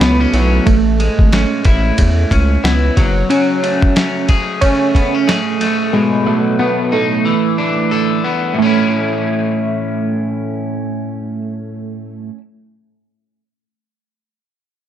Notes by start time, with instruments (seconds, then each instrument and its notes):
Already playing: clean electric guitar F#3 A3, tine electric piano A3 C#4 E4 F#4, analog synth pad C#4 F#5 A5 D6
0.00 analog synth bass C#2, synth keys B3, clean electric guitar B3, snare, ride
0.20 clean electric guitar C#4
0.33 analog synth bass B1, clean electric guitar F#3, tine electric piano A3 C#4 E4 F#4, snare, ride
0.66 analog synth bass A1, synth keys A3, kick, ride
1.00 clean electric guitar G#3, ride
1.19 analog synth bass G#1, kick
1.32 clean electric guitar C#4, snare, ride
1.65 analog synth bass A1, clean electric guitar E4, kick, ride
1.98 analog synth bass E2, kick, ride
2.31 analog synth bass C#2, clean electric guitar C#4, kick, ride
2.64 analog synth bass C#2, synth keys B3, clean electric guitar E4, snare, ride
2.97 analog synth bass F#1, clean electric guitar F#3, kick, snare, ride
3.30 clean electric guitar F#3, synth keys C#4, ride
3.63 clean electric guitar A3, ride
3.82 kick
3.96 clean electric guitar C#4, snare, ride
4.29 clean electric guitar G#4, kick, ride
4.61 clean electric guitar A3, synth keys C#4, kick, ride
4.95 clean electric guitar B3, kick, ride
5.15 clean electric guitar C#4
5.28 synth keys A3, clean electric guitar G#4, snare, ride
5.61 clean electric guitar A3, snare, ride
5.93 clean electric guitar B2, synth keys G#3
6.26 clean electric guitar F#3, synth keys A3
6.59 clean electric guitar A3, synth keys B3
6.92 synth keys A3, clean electric guitar D#4
7.25 clean electric guitar E3
7.58 clean electric guitar D4
7.91 clean electric guitar A4
8.24 clean electric guitar B3
8.54 clean electric guitar A2
8.58 synth keys A3, clean electric guitar C#4
8.66 clean electric guitar E4